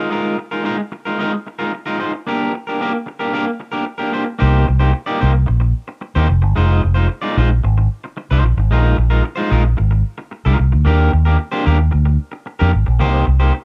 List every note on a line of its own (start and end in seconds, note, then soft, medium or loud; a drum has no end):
0.10 0.35 G#3 medium
0.10 0.35 D#4 medium
0.10 0.36 F4 medium
0.10 0.36 A#4 medium
0.38 muted clean electric guitar stroke soft
0.51 0.63 G#3 medium
0.51 0.64 D#4 medium
0.51 0.64 F4 medium
0.51 0.64 A#4 medium
0.64 0.80 G#3 medium
0.64 0.78 D#4 medium
0.64 0.77 F4 medium
0.64 0.76 A#4 medium
0.78 muted clean electric guitar stroke soft
0.92 muted clean electric guitar stroke soft
1.05 1.18 G#3 soft
1.05 1.18 D#4 soft
1.05 1.18 F4 medium
1.05 1.18 A#4 medium
1.19 1.35 G#3 medium
1.19 1.33 D#4 medium
1.19 1.33 F4 medium
1.19 1.32 A#4 loud
1.33 muted clean electric guitar stroke soft
1.47 muted clean electric guitar stroke soft
1.59 1.72 G#3 medium
1.59 1.72 D#4 medium
1.59 1.72 F4 medium
1.59 1.71 A#4 medium
1.73 muted clean electric guitar stroke soft
1.86 1.97 G#3 medium
1.86 1.98 D#4 medium
1.86 1.98 F4 medium
1.86 2.00 A#4 medium
1.98 2.11 G#3 medium
1.98 2.12 D#4 medium
1.98 2.12 F4 medium
1.98 2.12 C5 medium
2.13 muted clean electric guitar stroke soft
2.27 2.51 A#3 medium
2.27 2.52 D4 medium
2.27 2.52 G4 medium
2.27 2.52 A#4 medium
2.54 muted clean electric guitar stroke soft
2.67 2.80 A#3 soft
2.67 2.80 D4 soft
2.67 2.80 G4 soft
2.67 2.79 A#4 medium
2.81 2.96 A#3 medium
2.81 2.93 D4 medium
2.81 2.93 G4 medium
2.81 2.92 A#4 medium
2.93 muted clean electric guitar stroke soft
3.06 muted clean electric guitar stroke soft
3.19 3.32 A#3 soft
3.19 3.33 D4 medium
3.19 3.33 G4 medium
3.19 3.33 A#4 medium
3.33 3.50 A#3 medium
3.33 3.47 D4 medium
3.33 3.46 G4 medium
3.33 3.45 A#4 loud
3.46 muted clean electric guitar stroke soft
3.60 muted clean electric guitar stroke soft
3.72 3.84 A#3 medium
3.72 3.85 D4 medium
3.72 3.85 G4 medium
3.72 3.85 A#4 medium
3.85 muted clean electric guitar stroke soft
3.98 4.11 A#3 soft
3.98 4.11 D4 medium
3.98 4.12 G4 medium
3.98 4.13 A#4 medium
4.12 4.26 A#3 medium
4.12 4.25 D4 medium
4.12 4.25 G4 medium
4.12 4.24 C5 medium
4.25 muted clean electric guitar stroke soft
4.39 4.65 C2 loud
4.39 4.65 A#3 medium
4.39 4.65 D#4 medium
4.39 4.66 G4 medium
4.39 4.66 C5 medium
4.67 4.92 C2 medium
4.67 muted clean electric guitar stroke soft
4.79 4.91 A#3 medium
4.79 4.91 D#4 medium
4.79 4.92 G4 medium
4.79 4.92 C5 medium
4.92 muted clean electric guitar stroke soft
5.06 5.19 A#3 medium
5.06 5.19 D#4 medium
5.06 5.20 G4 medium
5.06 5.21 D5 medium
5.20 5.45 C2 medium
5.20 5.34 A#3 medium
5.20 5.33 D#4 medium
5.20 5.33 G4 medium
5.20 5.32 C5 medium
5.33 muted clean electric guitar stroke soft
5.46 5.72 A#1 medium
5.46 muted clean electric guitar stroke medium
5.60 muted clean electric guitar stroke soft
5.88 muted clean electric guitar stroke soft
6.01 muted clean electric guitar stroke soft
6.15 6.27 D#2 medium
6.15 6.27 A#3 medium
6.15 6.27 D#4 medium
6.15 6.28 G4 medium
6.15 6.28 C5 medium
6.28 6.43 F1 loud
6.28 muted clean electric guitar stroke soft
6.42 6.55 G1 loud
6.42 muted clean electric guitar stroke medium
6.56 6.80 F1 loud
6.56 6.81 G#3 medium
6.56 6.81 D#4 medium
6.56 6.81 F4 medium
6.56 6.82 C5 medium
6.85 7.07 F1 medium
6.94 7.07 G#3 soft
6.94 7.07 D#4 medium
6.94 7.08 F4 medium
6.94 7.08 C5 medium
7.08 muted clean electric guitar stroke soft
7.22 7.35 G#3 medium
7.22 7.36 D#4 medium
7.22 7.37 F4 medium
7.22 7.38 D5 medium
7.37 7.60 A#1 loud
7.37 7.49 G#3 medium
7.37 7.49 D#4 medium
7.37 7.50 F4 medium
7.37 7.49 C5 medium
7.50 muted clean electric guitar stroke soft
7.64 7.87 G#1 loud
7.64 muted clean electric guitar stroke soft
7.78 muted clean electric guitar stroke soft
8.04 muted clean electric guitar stroke medium
8.17 muted clean electric guitar stroke soft
8.31 8.42 C2 loud
8.31 8.43 G#3 medium
8.31 8.44 D#4 medium
8.31 8.44 F4 medium
8.31 8.46 C5 medium
8.44 8.55 A#1 loud
8.44 muted clean electric guitar stroke soft
8.57 8.72 G#1 loud
8.57 muted clean electric guitar stroke soft
8.71 8.94 A#1 loud
8.71 8.96 G#3 medium
8.71 8.96 D#4 medium
8.71 8.96 F4 medium
8.71 8.96 A#4 medium
8.97 9.21 A#1 medium
8.97 muted clean electric guitar stroke soft
9.10 9.23 G#3 medium
9.10 9.23 D#4 medium
9.10 9.23 F4 medium
9.10 9.23 A#4 medium
9.24 muted clean electric guitar stroke medium
9.36 9.48 G#3 medium
9.36 9.49 D#4 medium
9.36 9.50 F4 medium
9.36 9.52 C5 medium
9.50 9.74 A#1 medium
9.50 9.63 G#3 medium
9.50 9.63 D#4 medium
9.50 9.64 F4 medium
9.50 9.63 A#4 medium
9.64 muted clean electric guitar stroke soft
9.77 10.02 G#1 loud
9.77 muted clean electric guitar stroke medium
9.91 muted clean electric guitar stroke soft
10.18 muted clean electric guitar stroke medium
10.31 muted clean electric guitar stroke soft
10.45 10.57 C2 medium
10.45 10.57 G#3 medium
10.45 10.58 D#4 medium
10.45 10.57 F4 medium
10.45 10.58 A#4 medium
10.58 10.71 C2 medium
10.58 muted clean electric guitar stroke medium
10.72 10.84 D2 loud
10.72 muted clean electric guitar stroke soft
10.85 11.09 D#2 loud
10.85 11.10 A#3 medium
10.85 11.10 D4 medium
10.85 11.11 G4 medium
10.85 11.11 A#4 medium
11.12 11.36 D#2 loud
11.12 muted clean electric guitar stroke soft
11.25 11.36 A#3 medium
11.25 11.37 D4 medium
11.25 11.37 G4 medium
11.25 11.38 A#4 medium
11.38 muted clean electric guitar stroke soft
11.52 11.64 A#3 medium
11.52 11.64 D4 medium
11.52 11.65 G4 medium
11.52 11.66 C5 medium
11.65 11.89 D#2 loud
11.65 11.78 A#3 medium
11.65 11.78 D4 medium
11.65 11.78 G4 medium
11.65 11.78 A#4 medium
11.79 muted clean electric guitar stroke medium
11.91 12.16 D2 loud
11.91 muted clean electric guitar stroke soft
12.05 muted clean electric guitar stroke medium
12.32 muted clean electric guitar stroke medium
12.46 muted clean electric guitar stroke soft
12.59 12.72 F2 loud
12.59 12.71 A#3 medium
12.59 12.71 D4 medium
12.59 12.72 G4 medium
12.59 12.72 A#4 medium
12.72 12.85 G#1 medium
12.72 muted clean electric guitar stroke soft
12.86 13.01 A#1 medium
12.86 muted clean electric guitar stroke soft
12.99 13.24 C2 loud
12.99 13.25 A#3 medium
12.99 13.25 D#4 medium
12.99 13.25 G4 medium
12.99 13.25 C5 loud
13.26 13.50 C2 medium
13.26 muted clean electric guitar stroke soft
13.40 13.52 A#3 medium
13.40 13.53 D#4 medium
13.40 13.53 G4 medium
13.40 13.53 C5 medium
13.53 muted clean electric guitar stroke soft